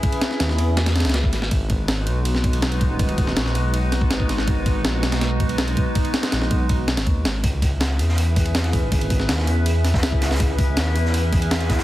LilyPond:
<<
  \new Staff \with { instrumentName = "Ambient pad" } { \time 4/4 \key cis \minor \tempo 4 = 162 <cis' e' gis' b' e''>2~ <cis' e' gis' b' e''>8 r4. | <gis b dis' fis' b'>2~ <gis b dis' fis' b'>8 r4. | <gis b dis' fis' b'>2~ <gis b dis' fis' b'>8 r4. | <gis b dis' fis' b'>2~ <gis b dis' fis' b'>8 r4. |
<gis b dis' fis' b'>2~ <gis b dis' fis' b'>8 r4. | <cis' e' gis' b' e''>2~ <cis' e' gis' b' e''>8 r4. | <cis' e' gis' b' e''>2~ <cis' e' gis' b' e''>8 r4. | <cis' e' gis' b' e''>2~ <cis' e' gis' b' e''>8 r4. | }
  \new Staff \with { instrumentName = "Detuned saw bass" } { \clef bass \time 4/4 \key cis \minor r4 dis,8 e,4~ e,16 cis,8. gis,,8 | gis,,4. b,,2~ b,,16 dis,,16~ | dis,,4 ais,,8 b,,4. gis,,4~ | gis,,4 ais,,8 b,,2~ b,,16 r16 |
r4 ais,,8 b,,4~ b,,16 gis,,16 dis,8 gis,,8 | cis,4. e,2~ e,16 gis,,16~ | gis,,4 dis,8 e,4. cis,4~ | cis,4 dis,8 e,2~ e,16 r16 | }
  \new DrumStaff \with { instrumentName = "Drums" } \drummode { \time 4/4 <bd cymr>16 cymr16 <cymr sn>16 sn16 <cymr sn>16 sn16 cymr8 <cymr sn>16 <cymr sn>16 <cymr sn>32 <cymr sn>32 <cymr sn>32 <cymr sn>32 <cymr sn>16 bd16 <cymr sn>16 sn16 | <bd cymr>8 <bd cymr>8 <cymr sn>8 cymr8 cymr16 sn16 <bd cymr>16 cymr16 <cymr sn>16 cymr16 <bd cymr>8 | <bd cymr>16 cymr16 <bd cymr>16 sn16 <cymr sn>16 sn16 cymr8 cymr8 <cymr sn>16 bd16 <cymr sn>16 bd16 <cymr sn>16 sn16 | <bd cymr>8 <bd cymr>8 <cymr sn>8 <cymr sn>16 <cymr sn>16 <cymr sn>8 <bd cymr>16 cymr16 <cymr sn>16 cymr16 <bd cymr>8 |
<bd cymr>16 cymr16 <cymr sn>16 <cymr sn>16 <cymr sn>16 sn16 <bd cymr>8 <bd cymr>8 <cymr sn>16 <cymr sn>16 <bd cymr>8 <cymr sn>8 | <hh bd cymr>8 <hh bd cymr>8 <hh cymr sn>8 <hh cymr>16 sn16 <hh cymr>8 <hh bd cymr>16 cymr16 <hh cymr sn>16 <cymr sn>16 <hh bd cymr>8 | <hh bd cymr>16 cymr16 <hh bd cymr>16 sn16 <hh cymr sn>16 sn16 <hh cymr>8 <hh cymr>8 <hh cymr sn>16 <bd sn>16 <hh cymr sn>16 bd16 <hh cymr sn>16 <hh sn>32 <hh sn>32 | <hh bd cymr>8 <hh bd cymr>8 <hh cymr sn>8 <hh cymr>16 sn16 <hh cymr>8 <hh bd cymr>16 cymr16 <hh cymr sn>16 <cymr sn>16 <hh bd cymr sn>16 <hh sn>16 | }
>>